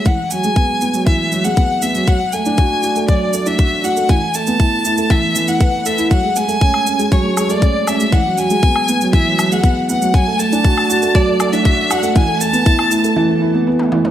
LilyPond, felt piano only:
\new Staff \with { instrumentName = "Felt piano" } { \time 4/4 \key e \mixolydian \tempo 4 = 119 e16 r16 fis16 gis16 b16 r16 b16 fis16 e16 r16 fis16 gis16 b16 r16 b16 fis16 | fis16 r16 a16 d'16 fis'16 r16 fis'16 a16 fis16 r16 a16 d'16 fis'16 r16 fis'16 a16 | e16 r16 a16 b16 e'16 r16 e'16 a16 e16 r16 e16 e'16 b'16 r16 a'16 e'16 | fis16 gis16 gis16 a16 cis'16 r16 cis'16 gis16 fis16 gis16 gis16 a16 cis'16 r16 cis'16 gis16 |
e16 fis16 fis16 gis16 b16 r16 b16 fis16 e16 fis16 fis16 gis16 b16 r16 b16 fis16 | fis16 a16 a16 d'16 fis'16 r16 fis'16 a16 fis16 a16 a16 d'16 fis'16 r16 fis'16 a16 | e16 a16 a16 b16 e'16 r16 e'16 a16 e16 a16 e'16 b16 b16 r16 e16 e16 | }